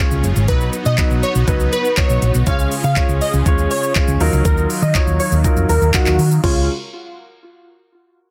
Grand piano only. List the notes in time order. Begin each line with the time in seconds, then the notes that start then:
0.00 G#3 C#4 F4 C#5
0.48 F#3 B3 D#4 B4
0.98 F#3 B3 D#4 B4
1.47 F#3 B3 D#4 B4
1.97 F#3 B3 D#4 F#4
2.47 G#3 C#4 F4 C#5
2.96 G#3 C#4 F4 C#5
3.46 G#3 C#4 F4 C#5
3.96 G#3 C#4 F4 C#5
4.20 F#3 D#4 F4 A#4
4.95 F#3 D#4 F4 C#5
5.44 F#3 D#4 F4 A#4
5.94 F#3 D#4 F4 A#4
6.44 G#3 C#4 F4 C#5